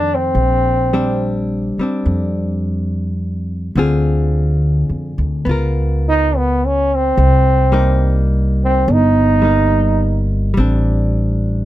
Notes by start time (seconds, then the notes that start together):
Already playing: F2 D#3 A3 C4 D4
0.15 C4
0.35 A#1
0.93 G3 C4 D4
1.78 G3 C4, muted upright bass stroke
1.83 D4
2.06 F2
3.75 D2 D3 C4 F4 G#4
4.89 F2
5.18 D2
5.45 C#2 B3
5.49 F4 A#4
6.09 D#4
6.37 B3
6.66 C#4
6.96 C4
7.17 C2
7.72 G3 A#3 D#4
8.65 C4
8.88 G1
8.93 D#4
9.42 G3 A#3 D#4
10.54 A1 G3 C4
10.60 D4